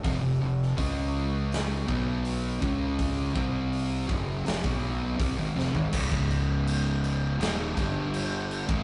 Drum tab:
CC |----------------|----------------|x-x-x-x-x-x-x-x-|
HH |o---o---o---o---|o---o---o---o---|----------------|
SD |---o----o-------|--------o-----o-|--------o-------|
FT |----------------|---------------o|----------------|
BD |o---o-----o---o-|o-o---o--o--o---|oo--------o----o|